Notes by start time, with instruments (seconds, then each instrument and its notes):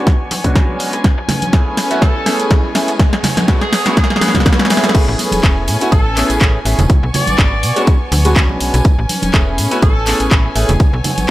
Already playing: violin section B3 G#5 C#6, riser
0.07 kick, snare, closed hi-hat
0.31 fm bass D2, open hi-hat, tambourine, high conga
0.44 grand piano G#3 B3 C#4 D4 F#4, kick, closed hi-hat, tambourine, low conga
0.55 grand piano G#3 B3 C#4 D4 F#4, kick, snare, closed hi-hat, tambourine
0.69 high conga
0.79 open hi-hat, tambourine
0.93 fm bass B1, closed hi-hat, tambourine
1.04 violin section C#4 B4, kick, snare, closed hi-hat
1.18 fm bass A1
1.29 snare, open hi-hat, tambourine, high conga, low conga
1.41 fm bass E1, closed hi-hat, tambourine, high conga
1.52 grand piano A3 B3 C#4 E4 G#4, kick, snare, closed hi-hat, tambourine
1.77 fm bass A2, snare, open hi-hat, tambourine
1.90 grand piano A3 B3 C#4 E4 F#4, closed hi-hat, tambourine
2.01 fm bass A1, grand piano A3 C#4 E4 A4, horn section A4, kick, snare, closed hi-hat
2.25 grand piano A3 B3 C#4 E4 G#4, snare, open hi-hat, tambourine
2.40 fm bass A1, closed hi-hat, tambourine
2.50 grand piano A3 B3 C#4 E4 G#4, kick, snare, closed hi-hat, tambourine
2.74 fm bass A1, grand piano A3 B3 C#4 E4 G#4, snare, open hi-hat, tambourine
2.88 fm bass E1, closed hi-hat, tambourine
2.99 violin section B3 C#5, kick, snare, closed hi-hat
3.13 fm bass B1, snare
3.23 snare, open hi-hat, tambourine, high conga, low conga
3.37 snare, closed hi-hat, tambourine, high conga
3.48 grand piano G#3 B3 C#4 D4 F#4, kick, snare, closed hi-hat
3.61 horn section G#4, snare
3.73 fm bass B2, snare, open hi-hat, tambourine
3.85 grand piano G#3 B3 C#4 D4 F#4, snare, closed hi-hat, tambourine
3.97 horn section G#4, kick, snare, closed hi-hat
4.04 snare
4.10 snare
4.16 snare
4.21 grand piano G#3 B3 C#4 D4 B4, snare, open hi-hat, tambourine, high conga
4.28 snare
4.34 fm bass G#2, grand piano G#3 B3 C#4 D4 F#4, kick, snare, closed hi-hat, tambourine, low conga
4.40 snare
4.45 kick, snare, closed hi-hat, tambourine
4.53 snare
4.58 fm bass B2, snare, high conga
4.65 snare
4.70 grand piano A3 B3 C#4 E4 G#4, snare, open hi-hat, tambourine
4.77 snare
4.83 snare, closed hi-hat, tambourine
4.89 snare
4.94 fm bass A1, grand piano A3 B3 C#4 E4 G#4, violin section C#4 B4 G#5, kick, closed hi-hat, crash
5.08 fm bass A1
5.19 open hi-hat, tambourine, high conga
5.32 fm bass E1, closed hi-hat, tambourine, high conga
5.43 fm bass E1, grand piano A3 B3 C#4 E4 G#4, kick, clap, closed hi-hat
5.68 fm bass A2, open hi-hat, tambourine
5.80 grand piano A3 B3 C#4 E4 F#4, closed hi-hat, tambourine
5.92 fm bass A1, grand piano B3 C#4 A4, horn section A4, kick, closed hi-hat, tambourine
6.16 grand piano A3 B3 C#4 E4 G#4, clap, open hi-hat, tambourine
6.30 fm bass A1, closed hi-hat, tambourine
6.41 fm bass A1, grand piano A3 B3 C#4 E4 G#4, kick, clap, closed hi-hat
6.65 fm bass A1, grand piano A3 B3 C#4 E4 G#4, open hi-hat, tambourine
6.79 fm bass E1, closed hi-hat, tambourine, low conga
6.90 violin section B3 G#5 C#6, kick, closed hi-hat, tambourine, low conga
7.03 fm bass B1
7.14 horn section D5, open hi-hat, tambourine, high conga, low conga
7.27 fm bass G#1, closed hi-hat, tambourine, high conga
7.38 fm bass G#1, grand piano G#3 B3 C#4 D4 F#4, kick, clap, closed hi-hat
7.63 fm bass B2, open hi-hat, tambourine
7.76 grand piano G#3 B3 C#4 D4 F#4, closed hi-hat, tambourine
7.87 kick, closed hi-hat, tambourine
8.12 fm bass D2, open hi-hat, tambourine, high conga
8.25 grand piano G#3 B3 C#4 D4 F#4, closed hi-hat, tambourine
8.36 grand piano B3 C#4 D4, kick, clap, closed hi-hat, tambourine
8.49 fm bass B1, high conga
8.60 fm bass B1, open hi-hat, tambourine
8.74 fm bass B1, closed hi-hat, tambourine
8.84 violin section C#4 B4, kick, closed hi-hat, tambourine
8.98 fm bass A1
9.09 open hi-hat, tambourine, high conga
9.22 fm bass E1, closed hi-hat, tambourine, high conga
9.33 fm bass E1, grand piano A3 B3 C#4 E4 G#4, kick, clap, closed hi-hat, tambourine
9.58 fm bass A2, open hi-hat, tambourine
9.71 grand piano A3 B3 C#4 E4 F#4, closed hi-hat, tambourine
9.82 fm bass A1, grand piano A3 B3, horn section A4, kick, closed hi-hat, tambourine
10.06 grand piano A3 B3 C#4 E4 G#4, clap, open hi-hat, tambourine
10.20 fm bass A1, closed hi-hat, tambourine
10.31 fm bass A1, grand piano A3 B3 C#4 E4 G#4, kick, clap, closed hi-hat, tambourine
10.55 fm bass A1, grand piano A3 B3 C#4 E4 G#4, open hi-hat, tambourine
10.69 fm bass E1, closed hi-hat, tambourine, low conga
10.80 violin section B3 C#5, kick, closed hi-hat, tambourine, low conga
10.93 fm bass B1
11.04 open hi-hat, tambourine, high conga, low conga
11.18 fm bass G#1, closed hi-hat, tambourine, high conga